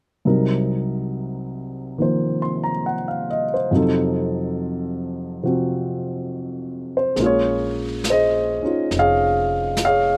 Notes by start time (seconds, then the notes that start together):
0.25 C2 C3 F#3 D#4 A#4
1.98 D#3 F3 A#3 C5
2.42 C6
2.64 A#5
2.86 F#5
3.08 F5
3.30 D#5
3.54 C5
3.71 F2 C3 F#3 D#4
3.76 A4
5.43 C3 F3 C4 F#4
6.97 C5
7.16 A#1 G#3 A#3 C#4, brush sweep, snare
7.20 F4 G#4
7.26 C#5
8.04 snare, hi-hat pedal
8.10 G#4 C5 D#5
8.62 C#4 D#4 F4, muted upright bass stroke
8.91 F1, brush sweep, snare
8.99 G#4 C#5 F5
9.77 snare, hi-hat pedal
9.85 G#4 C#5 F5